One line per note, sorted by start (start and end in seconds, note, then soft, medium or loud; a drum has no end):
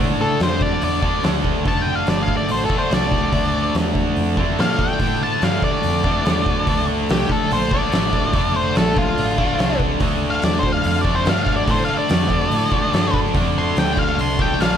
0.00 0.39 A2 medium
0.00 1.05 D3 medium
0.00 1.03 A3 medium
0.00 1.02 D4 medium
0.21 0.41 A4 medium
0.40 0.81 F2 medium
0.40 0.62 C5 medium
0.40 snare loud
0.40 open hi-hat medium
0.61 0.82 D5 medium
0.61 kick medium
0.82 1.23 E2 medium
0.82 1.24 D5 medium
0.82 open hi-hat medium
1.03 1.23 D3 medium
1.03 1.24 A3 medium
1.03 1.25 D4 medium
1.03 kick medium
1.23 1.64 D2 medium
1.23 1.64 D3 medium
1.23 1.66 A3 medium
1.23 1.66 D4 medium
1.23 snare loud
1.23 open hi-hat medium
1.45 kick medium
1.65 2.06 F1 medium
1.65 2.71 D3 medium
1.65 2.71 A3 medium
1.65 2.70 D4 medium
1.65 1.82 A5 loud
1.65 kick loud
1.65 open hi-hat soft
1.82 1.95 G5 medium
1.95 2.08 F5 medium
2.06 2.48 G1 medium
2.06 2.23 D5 medium
2.06 snare loud
2.06 open hi-hat medium
2.23 2.36 F5 medium
2.28 kick medium
2.37 2.50 D5 medium
2.49 2.69 A1 medium
2.49 2.64 C5 medium
2.49 open hi-hat medium
2.65 2.78 A4 medium
2.70 2.91 D3 medium
2.70 2.92 A3 medium
2.70 2.92 D4 medium
2.70 muted fingered electric bass stroke soft
2.70 kick medium
2.79 2.91 C5 medium
2.91 3.32 C2 medium
2.91 3.31 D3 medium
2.91 3.32 A3 medium
2.91 3.33 D4 medium
2.91 3.74 D5 loud
2.91 snare loud
2.91 open hi-hat medium
3.12 kick medium
3.31 3.73 D2 medium
3.31 4.39 D3 medium
3.31 4.38 A3 medium
3.31 4.37 D4 medium
3.31 kick loud
3.31 open hi-hat medium
3.75 4.16 E2 medium
3.75 snare loud
3.75 open hi-hat medium
3.95 kick medium
4.16 4.57 F2 medium
4.16 open hi-hat medium
4.37 4.57 D3 medium
4.37 4.58 A3 medium
4.37 4.60 D4 medium
4.37 kick medium
4.58 4.99 A#2 medium
4.58 4.99 D3 medium
4.58 5.00 A3 medium
4.58 5.01 D4 medium
4.58 4.80 F5 loud
4.58 snare loud
4.58 open hi-hat medium
4.79 5.21 G5 medium
4.79 kick medium
4.99 5.41 A2 medium
4.99 6.06 D3 medium
4.99 6.05 A3 medium
4.99 6.04 D4 medium
4.99 kick loud
4.99 open hi-hat medium
5.23 5.43 A5 medium
5.42 5.62 G2 medium
5.42 5.63 F5 medium
5.42 snare loud
5.42 open hi-hat medium
5.62 6.85 D5 loud
5.62 muted fingered electric bass stroke soft
5.62 kick medium
5.83 6.24 F2 medium
5.83 open hi-hat medium
6.04 6.24 D3 medium
6.04 6.25 A3 medium
6.04 6.27 D4 medium
6.04 kick medium
6.25 6.66 E2 medium
6.25 6.67 D3 medium
6.25 6.68 A3 medium
6.25 6.69 D4 medium
6.25 snare loud
6.25 open hi-hat medium
6.46 kick medium
6.67 7.08 D2 medium
6.67 7.73 D3 medium
6.67 7.72 A3 medium
6.67 7.72 D4 medium
6.67 kick medium
6.67 open hi-hat medium
7.09 7.29 C2 medium
7.09 7.31 G4 loud
7.09 snare loud
7.09 open hi-hat medium
7.29 7.51 A4 medium
7.29 muted fingered electric bass stroke soft
7.29 kick medium
7.51 7.92 A#1 medium
7.51 7.72 C5 loud
7.51 open hi-hat medium
7.71 7.92 D3 medium
7.71 7.93 A3 medium
7.71 7.94 D4 medium
7.71 8.54 D5 medium
7.71 kick medium
7.92 8.33 A1 medium
7.92 8.33 D3 medium
7.92 8.34 A3 medium
7.92 8.35 D4 medium
7.92 snare loud
7.92 open hi-hat medium
8.13 kick medium
8.33 8.75 F1 medium
8.33 9.40 D3 medium
8.33 9.39 A3 medium
8.33 9.38 D4 medium
8.33 kick loud
8.33 open hi-hat medium
8.56 8.76 C5 medium
8.75 9.17 A#1 medium
8.75 8.97 A4 loud
8.75 snare loud
8.75 open hi-hat medium
8.97 9.78 F4 loud
8.97 kick medium
9.18 9.58 A1 medium
9.18 open hi-hat medium
9.38 9.59 D3 medium
9.38 9.60 A3 medium
9.38 9.61 D4 medium
9.38 kick medium
9.59 10.00 C2 medium
9.59 10.00 D3 medium
9.59 10.01 A3 medium
9.59 10.03 D4 medium
9.59 snare loud
9.59 open hi-hat medium
9.80 kick medium
10.00 10.41 D2 medium
10.00 11.07 D3 medium
10.00 11.06 A3 loud
10.00 11.04 D4 loud
10.00 kick loud
10.00 open hi-hat medium
10.30 10.43 F5 medium
10.42 10.84 E2 medium
10.42 10.57 D5 loud
10.42 snare loud
10.42 open hi-hat medium
10.59 10.71 C5 medium
10.63 kick medium
10.72 10.85 F5 loud
10.84 11.26 F2 medium
10.84 11.01 F5 loud
10.84 open hi-hat medium
11.01 11.27 D4 medium
11.01 11.14 D5 medium
11.01 kick medium
11.06 11.25 D3 medium
11.06 11.26 A3 medium
11.16 11.28 C5 medium
11.26 11.67 G2 loud
11.26 11.67 D3 medium
11.26 11.68 A3 medium
11.26 11.69 D4 medium
11.26 11.41 F5 medium
11.26 snare loud
11.26 open hi-hat medium
11.43 11.55 F5 medium
11.43 kick medium
11.56 11.69 D5 medium
11.67 11.87 A2 medium
11.67 12.73 D3 medium
11.67 12.72 A3 medium
11.67 12.71 D4 medium
11.67 11.83 C5 medium
11.67 kick loud
11.67 open hi-hat medium
11.85 11.97 F5 medium
11.89 muted fingered electric bass stroke soft
11.98 13.19 D5 medium
12.09 12.50 F2 medium
12.09 snare loud
12.09 open hi-hat medium
12.30 kick medium
12.51 12.71 A2 medium
12.51 open hi-hat medium
12.71 12.92 D3 medium
12.71 12.93 A3 medium
12.71 12.95 D4 medium
12.71 muted fingered electric bass stroke soft
12.71 kick medium
12.93 13.34 G2 medium
12.93 13.34 D3 medium
12.93 13.35 A3 medium
12.93 13.37 D4 medium
12.93 snare loud
12.93 open hi-hat medium
13.14 kick medium
13.26 snare soft
13.34 13.75 F2 medium
13.34 14.41 D3 medium
13.34 14.41 A3 medium
13.34 14.39 D4 loud
13.34 kick loud
13.34 open hi-hat medium
13.58 13.77 C6 medium
13.77 14.17 D2 medium
13.77 13.98 G5 medium
13.77 snare loud
13.77 open hi-hat medium
13.97 14.18 F5 medium
13.97 kick medium
14.18 14.59 C2 medium
14.18 14.40 C6 medium
14.18 open hi-hat medium
14.39 14.59 D3 medium
14.39 14.61 A3 medium
14.39 14.62 D4 medium
14.39 14.61 G5 medium
14.39 kick medium
14.60 14.77 A#1 medium
14.60 14.77 D3 medium
14.60 14.77 A3 medium
14.60 14.77 D4 medium
14.60 14.77 F5 medium
14.60 snare loud
14.60 open hi-hat medium